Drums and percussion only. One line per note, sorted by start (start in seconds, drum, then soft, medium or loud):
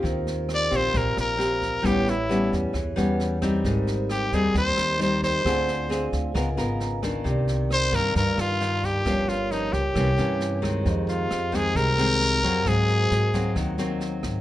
0.04 kick soft
0.04 snare soft
0.27 snare soft
0.49 cross-stick medium
0.49 snare soft
0.72 kick soft
0.72 snare soft
0.94 kick soft
0.94 snare soft
1.17 cross-stick medium
1.17 snare soft
1.40 snare soft
1.62 kick soft
1.62 snare soft
1.84 kick medium
1.84 cross-stick medium
1.84 snare soft
2.07 snare soft
2.30 snare soft
2.52 kick soft
2.52 snare soft
2.74 kick medium
2.74 cross-stick soft
2.74 snare soft
2.97 snare soft
3.19 snare soft
3.42 kick soft
3.42 cross-stick soft
3.42 snare soft
3.64 kick medium
3.64 snare soft
3.87 snare soft
4.09 cross-stick medium
4.09 snare soft
4.32 kick soft
4.32 snare soft
4.55 kick medium
4.55 snare soft
4.77 cross-stick medium
4.77 snare soft
5.00 snare soft
5.23 kick soft
5.23 snare soft
5.45 kick medium
5.45 cross-stick medium
5.45 snare soft
5.68 snare soft
5.91 snare soft
6.13 kick soft
6.13 snare soft
6.35 kick medium
6.35 cross-stick medium
6.35 snare soft
6.58 snare soft
6.80 snare soft
7.03 kick soft
7.03 cross-stick medium
7.03 snare soft
7.25 kick medium
7.25 snare soft
7.47 snare soft
7.70 cross-stick medium
7.70 snare soft
7.93 kick soft
7.93 snare soft
8.15 kick medium
8.15 snare soft
8.38 cross-stick soft
8.38 snare soft
8.61 snare soft
8.83 kick soft
8.83 snare soft
9.06 kick medium
9.06 cross-stick medium
9.06 snare soft
9.28 snare soft
9.51 snare soft
9.73 kick soft
9.73 snare soft
9.95 kick medium
9.95 cross-stick medium
9.95 snare soft
10.18 snare soft
10.40 snare soft
10.63 kick soft
10.63 cross-stick medium
10.63 snare soft
10.85 kick medium
10.85 snare soft
11.08 snare soft
11.30 cross-stick medium
11.30 snare soft
11.53 kick soft
11.53 snare soft
11.76 kick medium
11.76 snare soft
11.98 cross-stick medium
11.98 snare soft
12.20 snare soft
12.43 kick soft
12.43 snare soft
12.65 kick medium
12.65 cross-stick medium
12.65 snare soft
12.88 snare soft
13.11 snare soft
13.33 kick soft
13.33 snare soft
13.56 kick medium
13.56 cross-stick medium
13.56 snare soft
13.78 snare soft
14.00 snare soft
14.23 kick soft
14.23 cross-stick medium
14.23 snare soft